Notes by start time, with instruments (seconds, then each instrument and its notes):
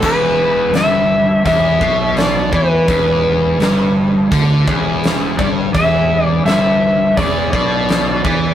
0.02 fingered electric bass E1, distorted electric guitar E2, electric slide guitar B4, kick, crash
0.73 fingered electric bass G1, distorted electric guitar G2, electric slide guitar E5, snare, open hi-hat
1.45 fingered electric bass E1, distorted electric guitar E2, electric slide guitar E5, kick, open hi-hat
1.81 fingered electric bass B1, distorted electric guitar B2, kick
2.17 electric slide guitar D5, snare, open hi-hat
2.51 fingered electric bass E2, distorted electric guitar E3, kick
2.55 electric slide guitar B4
2.88 fingered electric bass E1, distorted electric guitar E2, kick, open hi-hat
3.58 fingered electric bass G1, distorted electric guitar G2, snare, open hi-hat
4.31 fingered electric bass D2, distorted electric guitar D3, kick, open hi-hat
4.66 fingered electric bass E1, distorted electric guitar E2, kick
5.04 snare, open hi-hat
5.38 fingered electric bass G1, distorted electric guitar G2, electric slide guitar D5, kick
5.73 fingered electric bass E1, distorted electric guitar E2, electric slide guitar E5, kick, open hi-hat
6.25 electric slide guitar D5
6.45 fingered electric bass G1, distorted electric guitar G2, electric slide guitar E5, snare, open hi-hat
7.17 fingered electric bass E1, distorted electric guitar E2, electric slide guitar D5, kick, open hi-hat
7.53 fingered electric bass B1, distorted electric guitar B2, electric slide guitar D5, kick
7.89 snare, open hi-hat
8.24 fingered electric bass E2, distorted electric guitar E3, kick